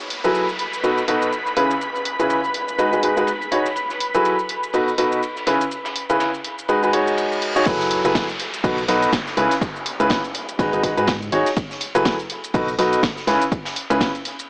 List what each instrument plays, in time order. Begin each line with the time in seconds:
Already playing: analog synth pad B4 B5, downlifter
0.00 shaker
0.10 open hi-hat, ride
0.24 grand piano F#3 E4 F#4 G#4 A4 B4, shaker
0.34 ride, shaker
0.49 shaker
0.59 open hi-hat, ride
0.73 shaker
0.83 grand piano B2 D#4 F#4 A4 B4, open hi-hat, shaker
0.98 shaker
1.08 grand piano B2 D#4 F#4 A4 B4, snare, open hi-hat, ride
1.22 shaker
1.32 ride, shaker
1.46 snare, shaker
1.57 grand piano C#3 C#4 E4 G#4 B4, open hi-hat, ride
1.71 snare, shaker
1.81 ride, shaker
1.95 shaker
2.05 open hi-hat, ride
2.19 grand piano C#3 C#4 E4 G#4 B4, shaker
2.30 ride, shaker
2.44 shaker
2.54 open hi-hat, ride
2.68 shaker
2.78 grand piano G#3 D#4 F#4 G#4 B4, ride, shaker
2.93 grand piano G#3 D#4 F#4 G#4 B4, shaker
3.03 grand piano G#3 D#4 F#4 G#4 B4, open hi-hat, ride
3.17 grand piano G#3 D#4 F#4 G#4 B4, shaker
3.27 ride, shaker
3.41 ride, shaker
3.51 grand piano D#4 F#4 G#4 C#5, open hi-hat, ride
3.65 snare, shaker
3.75 ride, shaker
3.90 snare, shaker
4.00 open hi-hat, ride
4.15 grand piano F#3 E4 F#4 G#4 A4 B4, shaker
4.25 ride, shaker
4.39 shaker
4.49 open hi-hat, ride
4.63 shaker
4.73 grand piano B2 D#4 F#4 A4 B4, open hi-hat, shaker
4.88 shaker
4.98 grand piano B2 D#4 F#4 A4 B4, snare, open hi-hat, ride
5.12 shaker
5.23 ride, shaker
5.36 snare, shaker
5.46 grand piano C#3 C#4 E4 G#4 B4, snare, open hi-hat, ride
5.61 ride, shaker
5.71 ride, shaker
5.85 snare, ride, shaker
5.96 open hi-hat, ride
6.09 grand piano C#3 C#4 E4 G#4 B4, ride, shaker
6.20 snare, ride, shaker
6.34 ride, shaker
6.44 open hi-hat, ride
6.59 shaker
6.68 grand piano G#3 D#4 F#4 G#4 B4, ride, reverse cymbal, shaker
6.83 grand piano G#3 D#4 F#4 G#4 B4, shaker
6.93 grand piano G#3 D#4 F#4 G#4 C#5, open hi-hat, ride
7.08 shaker
7.17 ride, shaker
7.32 ride, shaker
7.42 open hi-hat, ride
7.56 grand piano D#4 F#4 G#4 C#5, snare, shaker
7.66 fm bass F#1, grand piano F#3 E4 G#4 A4 B4, kick, closed hi-hat, crash, ride, downlifter, shaker
7.80 snare, shaker
7.91 open hi-hat, ride
8.05 fm bass F#1, grand piano F#3 E4 G#4 A4 B4, closed hi-hat, shaker
8.15 kick, snare, closed hi-hat, ride, shaker
8.29 closed hi-hat, shaker
8.39 open hi-hat, ride
8.54 closed hi-hat, shaker
8.64 fm bass B1, grand piano B2 D#4 F#4 A4 B4, kick, closed hi-hat, open hi-hat, shaker
8.78 closed hi-hat, shaker
8.88 fm bass B1, grand piano B2 D#4 F#4 A4 B4, snare, open hi-hat, ride
9.03 closed hi-hat, shaker
9.13 kick, snare, closed hi-hat, ride, shaker
9.27 snare, shaker
9.37 fm bass C#2, grand piano C#3 C#4 E4 G#4 B4, open hi-hat, ride
9.51 snare, closed hi-hat, shaker
9.61 kick, closed hi-hat, ride, shaker
9.76 shaker
9.86 open hi-hat, ride
10.00 fm bass C#2, grand piano C#3 C#4 E4 G#4 B4, closed hi-hat, shaker
10.10 kick, snare, closed hi-hat, ride, shaker
10.24 closed hi-hat, shaker
10.34 open hi-hat, ride
10.49 closed hi-hat, shaker
10.59 fm bass G#1, grand piano G#3 D#4 F#4 G#4 B4, kick, closed hi-hat, ride, shaker
10.73 fm bass G#1, grand piano G#3 D#4 F#4 G#4 B4, closed hi-hat, shaker
10.83 fm bass G#1, grand piano G#3 D#4 F#4 G#4 B4, kick, open hi-hat, ride
10.97 fm bass G#2, grand piano G#3 D#4 F#4 G#4 B4, closed hi-hat, shaker
11.07 kick, snare, closed hi-hat, ride, shaker
11.22 ride, shaker
11.32 fm bass G#1, grand piano D#4 F#4 G#4 C#5, open hi-hat, ride
11.46 snare, closed hi-hat, shaker
11.56 kick, closed hi-hat, ride, shaker
11.71 snare, shaker
11.80 open hi-hat, ride
11.95 fm bass F#1, grand piano F#3 E4 G#4 A4 B4, closed hi-hat, shaker
12.05 kick, snare, closed hi-hat, ride, shaker
12.19 closed hi-hat, shaker
12.30 open hi-hat, ride
12.44 closed hi-hat, shaker
12.54 fm bass B1, grand piano B2 D#4 F#4 A4 B4, kick, closed hi-hat, open hi-hat, shaker
12.68 closed hi-hat, shaker
12.79 fm bass B1, grand piano B2 D#4 F#4 A4 B4, snare, open hi-hat, ride
12.93 closed hi-hat, shaker
13.03 kick, snare, closed hi-hat, ride, shaker
13.17 snare, shaker
13.27 fm bass C#2, grand piano C#3 C#4 E4 G#4 B4, snare, open hi-hat, ride
13.41 closed hi-hat, ride, shaker
13.52 kick, closed hi-hat, ride, shaker
13.65 snare, ride, shaker
13.76 open hi-hat, ride
13.90 fm bass C#2, grand piano C#3 C#4 E4 G#4 B4, closed hi-hat, ride, shaker
14.01 kick, snare, closed hi-hat, ride, shaker
14.15 closed hi-hat, ride, shaker
14.25 open hi-hat, ride
14.39 closed hi-hat, shaker